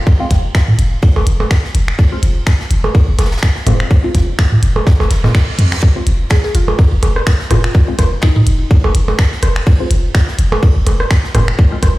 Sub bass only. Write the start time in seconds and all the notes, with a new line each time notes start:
0.31 F1
0.79 F1
1.16 F1
1.27 F1
1.75 F1
2.23 F1
2.71 F1
3.08 F1
3.19 F1
3.67 F1
4.15 F1
4.63 F1
5.00 F1
5.11 F1
5.59 F2
6.07 F1
6.55 F1
6.92 F1
7.03 F1
7.51 F1
7.99 F1
8.47 F1
8.84 F1
8.95 F1
9.43 F1
9.91 F1
10.39 F1
10.76 F1
10.87 F1
11.35 F1
11.83 F1